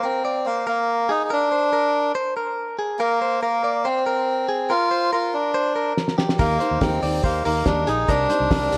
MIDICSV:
0, 0, Header, 1, 6, 480
1, 0, Start_track
1, 0, Tempo, 423729
1, 1476, Time_signature, 4, 2, 24, 8
1, 9941, End_track
2, 0, Start_track
2, 0, Title_t, "Clean electric guitar"
2, 0, Program_c, 0, 27
2, 38, Note_on_c, 0, 70, 85
2, 276, Note_off_c, 0, 70, 0
2, 280, Note_on_c, 0, 74, 70
2, 518, Note_off_c, 0, 74, 0
2, 518, Note_on_c, 0, 72, 81
2, 752, Note_off_c, 0, 72, 0
2, 757, Note_on_c, 0, 70, 75
2, 1207, Note_off_c, 0, 70, 0
2, 1235, Note_on_c, 0, 68, 92
2, 1476, Note_off_c, 0, 68, 0
2, 1476, Note_on_c, 0, 70, 110
2, 1713, Note_off_c, 0, 70, 0
2, 1717, Note_on_c, 0, 72, 76
2, 1953, Note_off_c, 0, 72, 0
2, 1958, Note_on_c, 0, 70, 81
2, 2408, Note_off_c, 0, 70, 0
2, 2436, Note_on_c, 0, 72, 87
2, 2676, Note_off_c, 0, 72, 0
2, 2680, Note_on_c, 0, 70, 77
2, 3130, Note_off_c, 0, 70, 0
2, 3156, Note_on_c, 0, 68, 81
2, 3396, Note_off_c, 0, 68, 0
2, 3398, Note_on_c, 0, 70, 106
2, 3637, Note_off_c, 0, 70, 0
2, 3643, Note_on_c, 0, 72, 78
2, 3876, Note_off_c, 0, 72, 0
2, 3881, Note_on_c, 0, 70, 83
2, 4118, Note_off_c, 0, 70, 0
2, 4123, Note_on_c, 0, 74, 76
2, 4357, Note_off_c, 0, 74, 0
2, 4361, Note_on_c, 0, 72, 86
2, 4599, Note_off_c, 0, 72, 0
2, 4604, Note_on_c, 0, 70, 83
2, 5052, Note_off_c, 0, 70, 0
2, 5081, Note_on_c, 0, 68, 89
2, 5319, Note_off_c, 0, 68, 0
2, 5322, Note_on_c, 0, 70, 105
2, 5558, Note_off_c, 0, 70, 0
2, 5562, Note_on_c, 0, 72, 80
2, 5800, Note_off_c, 0, 72, 0
2, 5807, Note_on_c, 0, 70, 82
2, 6254, Note_off_c, 0, 70, 0
2, 6280, Note_on_c, 0, 72, 91
2, 6515, Note_off_c, 0, 72, 0
2, 6520, Note_on_c, 0, 70, 80
2, 6970, Note_off_c, 0, 70, 0
2, 6999, Note_on_c, 0, 67, 82
2, 7238, Note_off_c, 0, 67, 0
2, 7241, Note_on_c, 0, 70, 99
2, 7473, Note_off_c, 0, 70, 0
2, 7478, Note_on_c, 0, 72, 73
2, 7716, Note_off_c, 0, 72, 0
2, 7721, Note_on_c, 0, 70, 79
2, 7955, Note_off_c, 0, 70, 0
2, 7959, Note_on_c, 0, 74, 75
2, 8196, Note_off_c, 0, 74, 0
2, 8200, Note_on_c, 0, 72, 82
2, 8437, Note_off_c, 0, 72, 0
2, 8442, Note_on_c, 0, 70, 80
2, 8890, Note_off_c, 0, 70, 0
2, 8918, Note_on_c, 0, 68, 100
2, 9157, Note_off_c, 0, 68, 0
2, 9159, Note_on_c, 0, 70, 113
2, 9395, Note_off_c, 0, 70, 0
2, 9400, Note_on_c, 0, 72, 78
2, 9637, Note_off_c, 0, 72, 0
2, 9637, Note_on_c, 0, 70, 75
2, 9941, Note_off_c, 0, 70, 0
2, 9941, End_track
3, 0, Start_track
3, 0, Title_t, "Steel-string acoustic guitar"
3, 0, Program_c, 1, 25
3, 7237, Note_on_c, 1, 51, 92
3, 7246, Note_on_c, 1, 58, 92
3, 7252, Note_on_c, 1, 63, 96
3, 7259, Note_on_c, 1, 67, 105
3, 7462, Note_off_c, 1, 67, 0
3, 7476, Note_on_c, 1, 67, 55
3, 7477, Note_off_c, 1, 51, 0
3, 7480, Note_off_c, 1, 63, 0
3, 7482, Note_off_c, 1, 58, 0
3, 7493, Note_on_c, 1, 63, 56
3, 7506, Note_on_c, 1, 58, 49
3, 7711, Note_off_c, 1, 58, 0
3, 7717, Note_off_c, 1, 67, 0
3, 7720, Note_on_c, 1, 51, 75
3, 7722, Note_off_c, 1, 63, 0
3, 7725, Note_on_c, 1, 58, 78
3, 7735, Note_on_c, 1, 63, 85
3, 7741, Note_on_c, 1, 67, 91
3, 7938, Note_off_c, 1, 67, 0
3, 7951, Note_on_c, 1, 67, 60
3, 7958, Note_off_c, 1, 63, 0
3, 7959, Note_off_c, 1, 51, 0
3, 7961, Note_off_c, 1, 58, 0
3, 7971, Note_on_c, 1, 63, 54
3, 7982, Note_on_c, 1, 58, 49
3, 8190, Note_off_c, 1, 58, 0
3, 8191, Note_on_c, 1, 51, 69
3, 8194, Note_off_c, 1, 67, 0
3, 8198, Note_off_c, 1, 63, 0
3, 8204, Note_on_c, 1, 58, 70
3, 8212, Note_on_c, 1, 63, 77
3, 8219, Note_on_c, 1, 67, 72
3, 8414, Note_off_c, 1, 67, 0
3, 8428, Note_on_c, 1, 67, 64
3, 8429, Note_off_c, 1, 63, 0
3, 8434, Note_off_c, 1, 51, 0
3, 8440, Note_off_c, 1, 58, 0
3, 8443, Note_on_c, 1, 63, 49
3, 8458, Note_on_c, 1, 58, 47
3, 8661, Note_off_c, 1, 58, 0
3, 8665, Note_on_c, 1, 51, 81
3, 8668, Note_off_c, 1, 63, 0
3, 8672, Note_off_c, 1, 67, 0
3, 8675, Note_on_c, 1, 58, 89
3, 8682, Note_on_c, 1, 63, 80
3, 8687, Note_on_c, 1, 67, 97
3, 8893, Note_off_c, 1, 67, 0
3, 8907, Note_on_c, 1, 67, 61
3, 8908, Note_off_c, 1, 63, 0
3, 8911, Note_off_c, 1, 51, 0
3, 8916, Note_off_c, 1, 58, 0
3, 8921, Note_on_c, 1, 63, 58
3, 8936, Note_on_c, 1, 58, 46
3, 9152, Note_off_c, 1, 67, 0
3, 9158, Note_off_c, 1, 58, 0
3, 9158, Note_on_c, 1, 48, 93
3, 9159, Note_off_c, 1, 63, 0
3, 9159, Note_on_c, 1, 55, 96
3, 9163, Note_on_c, 1, 60, 97
3, 9170, Note_on_c, 1, 63, 88
3, 9174, Note_on_c, 1, 67, 107
3, 9177, Note_on_c, 1, 74, 97
3, 9374, Note_off_c, 1, 74, 0
3, 9387, Note_off_c, 1, 67, 0
3, 9388, Note_on_c, 1, 74, 56
3, 9395, Note_off_c, 1, 63, 0
3, 9397, Note_off_c, 1, 48, 0
3, 9397, Note_off_c, 1, 55, 0
3, 9399, Note_off_c, 1, 60, 0
3, 9401, Note_on_c, 1, 67, 59
3, 9408, Note_on_c, 1, 63, 50
3, 9419, Note_on_c, 1, 60, 51
3, 9627, Note_off_c, 1, 60, 0
3, 9632, Note_off_c, 1, 74, 0
3, 9634, Note_off_c, 1, 63, 0
3, 9635, Note_on_c, 1, 48, 82
3, 9637, Note_on_c, 1, 55, 80
3, 9638, Note_off_c, 1, 67, 0
3, 9641, Note_on_c, 1, 60, 86
3, 9648, Note_on_c, 1, 63, 86
3, 9651, Note_on_c, 1, 67, 94
3, 9657, Note_on_c, 1, 74, 85
3, 9859, Note_off_c, 1, 74, 0
3, 9866, Note_off_c, 1, 67, 0
3, 9872, Note_on_c, 1, 74, 68
3, 9875, Note_off_c, 1, 48, 0
3, 9876, Note_off_c, 1, 55, 0
3, 9878, Note_off_c, 1, 60, 0
3, 9878, Note_off_c, 1, 63, 0
3, 9879, Note_on_c, 1, 67, 59
3, 9891, Note_on_c, 1, 63, 59
3, 9899, Note_on_c, 1, 60, 51
3, 9941, Note_off_c, 1, 60, 0
3, 9941, Note_off_c, 1, 63, 0
3, 9941, Note_off_c, 1, 67, 0
3, 9941, Note_off_c, 1, 74, 0
3, 9941, End_track
4, 0, Start_track
4, 0, Title_t, "Melodica"
4, 0, Program_c, 2, 22
4, 44, Note_on_c, 2, 60, 96
4, 520, Note_on_c, 2, 58, 94
4, 534, Note_off_c, 2, 60, 0
4, 751, Note_off_c, 2, 58, 0
4, 768, Note_on_c, 2, 58, 102
4, 1245, Note_on_c, 2, 63, 100
4, 1256, Note_off_c, 2, 58, 0
4, 1391, Note_off_c, 2, 63, 0
4, 1408, Note_on_c, 2, 63, 76
4, 1481, Note_off_c, 2, 63, 0
4, 1498, Note_on_c, 2, 62, 117
4, 2402, Note_off_c, 2, 62, 0
4, 3388, Note_on_c, 2, 58, 106
4, 3853, Note_off_c, 2, 58, 0
4, 3870, Note_on_c, 2, 58, 93
4, 4359, Note_on_c, 2, 60, 102
4, 4368, Note_off_c, 2, 58, 0
4, 5325, Note_on_c, 2, 65, 127
4, 5347, Note_off_c, 2, 60, 0
4, 5791, Note_off_c, 2, 65, 0
4, 5808, Note_on_c, 2, 65, 112
4, 6045, Note_on_c, 2, 62, 100
4, 6050, Note_off_c, 2, 65, 0
4, 6716, Note_off_c, 2, 62, 0
4, 7246, Note_on_c, 2, 58, 107
4, 7719, Note_on_c, 2, 60, 96
4, 7736, Note_off_c, 2, 58, 0
4, 8201, Note_on_c, 2, 58, 92
4, 8212, Note_off_c, 2, 60, 0
4, 8425, Note_off_c, 2, 58, 0
4, 8442, Note_on_c, 2, 58, 93
4, 8663, Note_off_c, 2, 58, 0
4, 8681, Note_on_c, 2, 62, 101
4, 8926, Note_off_c, 2, 62, 0
4, 8927, Note_on_c, 2, 63, 104
4, 9160, Note_on_c, 2, 62, 118
4, 9169, Note_off_c, 2, 63, 0
4, 9941, Note_off_c, 2, 62, 0
4, 9941, End_track
5, 0, Start_track
5, 0, Title_t, "Fingered electric bass"
5, 0, Program_c, 3, 33
5, 7244, Note_on_c, 3, 39, 109
5, 7438, Note_off_c, 3, 39, 0
5, 7603, Note_on_c, 3, 39, 94
5, 7699, Note_off_c, 3, 39, 0
5, 7720, Note_on_c, 3, 39, 111
5, 7916, Note_off_c, 3, 39, 0
5, 7960, Note_on_c, 3, 39, 96
5, 8155, Note_off_c, 3, 39, 0
5, 8201, Note_on_c, 3, 39, 101
5, 8396, Note_off_c, 3, 39, 0
5, 8448, Note_on_c, 3, 39, 91
5, 8640, Note_off_c, 3, 39, 0
5, 8680, Note_on_c, 3, 39, 114
5, 8875, Note_off_c, 3, 39, 0
5, 8923, Note_on_c, 3, 34, 97
5, 9117, Note_off_c, 3, 34, 0
5, 9156, Note_on_c, 3, 36, 113
5, 9353, Note_off_c, 3, 36, 0
5, 9518, Note_on_c, 3, 36, 98
5, 9615, Note_off_c, 3, 36, 0
5, 9640, Note_on_c, 3, 36, 115
5, 9835, Note_off_c, 3, 36, 0
5, 9883, Note_on_c, 3, 36, 94
5, 9941, Note_off_c, 3, 36, 0
5, 9941, End_track
6, 0, Start_track
6, 0, Title_t, "Drums"
6, 6768, Note_on_c, 9, 38, 65
6, 6881, Note_off_c, 9, 38, 0
6, 6886, Note_on_c, 9, 38, 65
6, 6999, Note_off_c, 9, 38, 0
6, 7006, Note_on_c, 9, 38, 96
6, 7119, Note_off_c, 9, 38, 0
6, 7127, Note_on_c, 9, 38, 94
6, 7240, Note_off_c, 9, 38, 0
6, 7241, Note_on_c, 9, 36, 123
6, 7241, Note_on_c, 9, 46, 88
6, 7354, Note_off_c, 9, 36, 0
6, 7355, Note_off_c, 9, 46, 0
6, 7476, Note_on_c, 9, 46, 74
6, 7479, Note_on_c, 9, 44, 67
6, 7589, Note_off_c, 9, 46, 0
6, 7592, Note_off_c, 9, 44, 0
6, 7716, Note_on_c, 9, 44, 65
6, 7717, Note_on_c, 9, 46, 81
6, 7719, Note_on_c, 9, 36, 117
6, 7722, Note_on_c, 9, 38, 122
6, 7830, Note_off_c, 9, 44, 0
6, 7830, Note_off_c, 9, 46, 0
6, 7832, Note_off_c, 9, 36, 0
6, 7835, Note_off_c, 9, 38, 0
6, 7957, Note_on_c, 9, 44, 72
6, 7962, Note_on_c, 9, 46, 88
6, 8070, Note_off_c, 9, 44, 0
6, 8075, Note_off_c, 9, 46, 0
6, 8194, Note_on_c, 9, 44, 64
6, 8196, Note_on_c, 9, 46, 75
6, 8198, Note_on_c, 9, 36, 113
6, 8307, Note_off_c, 9, 44, 0
6, 8309, Note_off_c, 9, 46, 0
6, 8311, Note_off_c, 9, 36, 0
6, 8439, Note_on_c, 9, 44, 70
6, 8440, Note_on_c, 9, 46, 78
6, 8553, Note_off_c, 9, 44, 0
6, 8553, Note_off_c, 9, 46, 0
6, 8674, Note_on_c, 9, 46, 77
6, 8675, Note_on_c, 9, 38, 115
6, 8676, Note_on_c, 9, 44, 74
6, 8677, Note_on_c, 9, 36, 117
6, 8788, Note_off_c, 9, 38, 0
6, 8788, Note_off_c, 9, 46, 0
6, 8790, Note_off_c, 9, 44, 0
6, 8791, Note_off_c, 9, 36, 0
6, 8914, Note_on_c, 9, 46, 81
6, 8915, Note_on_c, 9, 44, 79
6, 9027, Note_off_c, 9, 46, 0
6, 9028, Note_off_c, 9, 44, 0
6, 9158, Note_on_c, 9, 46, 80
6, 9159, Note_on_c, 9, 36, 126
6, 9159, Note_on_c, 9, 44, 75
6, 9272, Note_off_c, 9, 36, 0
6, 9272, Note_off_c, 9, 44, 0
6, 9272, Note_off_c, 9, 46, 0
6, 9396, Note_on_c, 9, 46, 74
6, 9399, Note_on_c, 9, 44, 73
6, 9510, Note_off_c, 9, 46, 0
6, 9512, Note_off_c, 9, 44, 0
6, 9637, Note_on_c, 9, 36, 127
6, 9639, Note_on_c, 9, 44, 72
6, 9640, Note_on_c, 9, 46, 83
6, 9645, Note_on_c, 9, 38, 120
6, 9751, Note_off_c, 9, 36, 0
6, 9752, Note_off_c, 9, 44, 0
6, 9753, Note_off_c, 9, 46, 0
6, 9758, Note_off_c, 9, 38, 0
6, 9877, Note_on_c, 9, 44, 73
6, 9882, Note_on_c, 9, 46, 88
6, 9941, Note_off_c, 9, 44, 0
6, 9941, Note_off_c, 9, 46, 0
6, 9941, End_track
0, 0, End_of_file